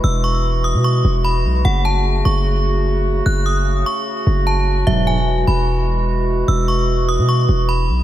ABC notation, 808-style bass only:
X:1
M:4/4
L:1/16
Q:1/4=149
K:E
V:1 name="808-style bass" clef=bass
E,,,6- E,,, B,,3 E,,,4 B,,,2 | F,,,6 F,,,8- F,,,2 | F,,,6 z4 F,,,6 | E,,,6 E,,,8- E,,,2 |
E,,,6- E,,, B,,3 E,,,4 B,,,2 |]